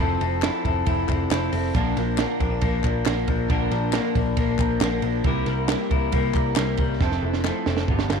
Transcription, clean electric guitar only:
0.00 1.97 F3 medium
0.00 0.64 A4 medium
0.21 1.08 C4 medium
0.43 0.86 E4 medium
0.65 1.79 A4 medium
0.87 1.30 E4 medium
1.09 1.51 C4 medium
1.31 1.75 E4 medium
1.52 1.79 C4 medium
1.74 3.48 A#2 medium
1.74 2.40 D4 medium
1.97 2.83 F3 medium
2.18 2.62 A#3 medium
2.40 2.51 C4 medium
2.51 3.49 D4 medium
2.62 3.05 A#3 medium
2.84 3.27 F3 medium
3.06 3.94 A#3 medium
3.28 3.71 F3 medium
3.49 5.25 A#2 medium
3.49 4.14 D4 medium
3.72 4.58 F3 medium
3.94 4.37 A#3 medium
4.15 5.25 D4 medium
4.38 4.81 A#3 medium
4.60 5.02 F3 medium
4.81 5.30 A#3 medium
5.04 5.30 F3 medium
5.26 7.01 C3 medium
5.26 5.90 E4 medium
5.47 6.34 G3 medium
5.70 6.12 A#3 medium
5.91 7.01 E4 medium
6.13 6.56 A#3 medium
6.35 6.78 G3 medium
6.57 7.05 A#3 medium
6.79 7.06 G3 medium
7.01 7.89 F2 medium
7.01 7.66 C4 medium
7.23 7.93 E3 medium
7.45 7.93 A3 medium
7.67 7.94 C4 medium
7.89 8.20 G2 medium
8.11 8.20 F3 medium

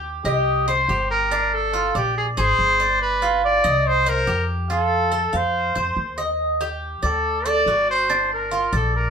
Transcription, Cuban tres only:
0.00 0.24 G4 medium
0.25 0.67 D#5 medium
0.68 0.89 C5 medium
0.89 1.30 G4 medium
1.31 1.73 D4 medium
1.73 1.94 F4 medium
1.95 2.36 D5 medium
2.37 2.79 G#4 medium
2.80 3.21 D5 medium
3.22 3.63 F4 medium
3.64 4.05 D#5 medium
4.06 4.27 C5 medium
4.27 4.69 G4 medium
4.70 5.11 F4 medium
5.12 5.33 A4 medium
5.33 5.75 F5 medium
5.75 6.17 C5 medium
6.18 6.59 D#5 medium
6.61 7.02 G4 medium
7.03 7.44 D5 medium
7.46 7.66 A4 medium
7.67 8.08 F#4 medium
8.10 8.51 D4 medium
8.51 8.72 F4 medium
8.73 9.10 D5 medium

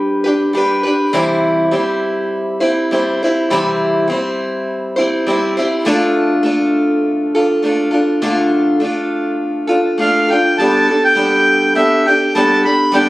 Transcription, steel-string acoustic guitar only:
0.00 0.53 G3 medium
0.00 0.24 D4 medium
0.00 0.25 G4 medium
0.00 0.23 B4 medium
0.24 0.53 D4 soft
0.24 0.54 G4 soft
0.24 0.53 B4 medium
0.53 0.83 G3 medium
0.53 0.84 D4 medium
0.53 0.84 G4 medium
0.57 0.82 B4 medium
0.83 1.13 D4 medium
0.83 1.14 G4 medium
0.83 1.13 B4 medium
1.13 1.72 C3 medium
1.13 1.73 E3 medium
1.13 1.70 G3 medium
1.13 1.71 C4 medium
1.13 1.72 E4 medium
1.13 1.73 C5 medium
1.71 2.61 G3 medium
1.71 2.61 C4 medium
1.71 2.60 E4 medium
1.71 2.59 C5 medium
2.60 2.90 G3 soft
2.60 2.91 C4 soft
2.60 2.91 E4 medium
2.60 2.90 C5 medium
2.91 3.21 G3 medium
2.91 3.21 C4 medium
2.91 3.21 E4 medium
2.91 3.22 C5 medium
3.23 3.50 G3 soft
3.23 3.51 C4 medium
3.23 3.51 E4 medium
3.23 3.51 C5 medium
3.50 4.09 C3 medium
3.50 4.10 E3 medium
3.50 4.06 G3 medium
3.50 4.08 C4 medium
3.50 4.09 E4 medium
3.50 4.10 C5 medium
4.08 4.97 G3 medium
4.08 4.98 C4 medium
4.08 4.97 E4 medium
4.12 4.95 C5 medium
4.96 5.25 G3 soft
4.96 5.27 C4 medium
4.96 5.28 E4 medium
4.96 5.27 C5 medium
5.27 5.57 G3 medium
5.27 5.57 C4 medium
5.27 5.57 E4 medium
5.27 5.56 C5 medium
5.57 5.85 G3 medium
5.57 5.86 C4 medium
5.57 5.87 E4 medium
5.57 5.87 C5 medium
5.85 8.21 D3 medium
5.85 6.42 A3 medium
5.85 6.44 D4 medium
5.85 6.45 F4 medium
5.85 6.45 A4 loud
6.43 7.62 A3 medium
6.43 7.38 D4 medium
6.43 7.35 F4 medium
6.43 7.34 A4 medium
7.35 7.63 D4 soft
7.35 7.63 F4 soft
7.35 7.64 A4 medium
7.63 7.93 A3 medium
7.63 7.93 D4 medium
7.63 7.91 F4 medium
7.63 7.90 A4 medium
7.91 8.21 D4 soft
7.91 8.22 F4 medium
7.91 8.22 A4 medium
8.22 8.81 D3 medium
8.22 8.79 A3 medium
8.22 8.80 D4 medium
8.22 8.81 F4 medium
8.22 8.82 A4 medium
8.80 9.69 A3 medium
8.80 9.69 D4 medium
8.80 9.68 F4 medium
8.84 9.66 A4 medium
9.67 9.98 D4 soft
9.67 9.99 F4 medium
9.67 9.98 A4 medium
9.98 10.28 A3 medium
9.98 10.29 D4 medium
9.98 10.29 F4 medium
9.98 10.27 A4 medium
10.28 10.59 F4 medium
10.28 10.58 A4 medium
10.32 10.59 D4 medium
10.58 10.88 G3 medium
10.58 10.88 B3 medium
10.58 10.89 D4 medium
10.58 10.89 G4 medium
10.58 10.86 A4 medium
10.87 11.16 D4 soft
10.87 11.16 G4 soft
10.87 11.17 A4 soft
11.15 11.82 G3 medium
11.15 11.74 B3 medium
11.15 11.75 D4 medium
11.15 11.77 G4 medium
11.15 11.77 A4 medium
11.75 12.05 B3 medium
11.75 12.05 D4 medium
11.75 12.06 G4 medium
11.75 12.04 A4 medium
12.06 12.35 D4 soft
12.06 12.36 G4 soft
12.06 12.35 A4 medium
12.35 12.64 G3 medium
12.35 12.65 B3 medium
12.35 12.65 D4 medium
12.35 12.64 G4 medium
12.35 12.62 A4 medium
12.63 12.93 D4 soft
12.63 12.93 G4 medium
12.63 12.93 A4 medium
12.92 13.09 G3 medium
12.92 13.09 B3 medium
12.92 13.09 D4 medium
12.92 13.09 G4 medium
12.92 13.09 A4 medium

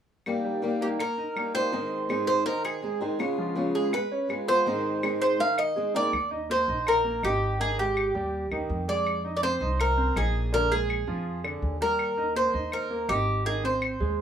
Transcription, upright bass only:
6.13 6.64 D#2 medium
6.68 7.19 A#1 medium
7.23 8.09 G#1 medium
8.15 8.49 D#2 medium
8.51 8.68 D#2 medium
8.70 9.55 F2 medium
9.61 10.12 C2 medium
10.16 11.02 A#1 medium
11.07 11.58 F2 medium
11.62 12.48 D#2 medium
12.54 13.05 D#2 medium
13.09 13.95 G#1 medium
14.00 14.21 D#2 medium

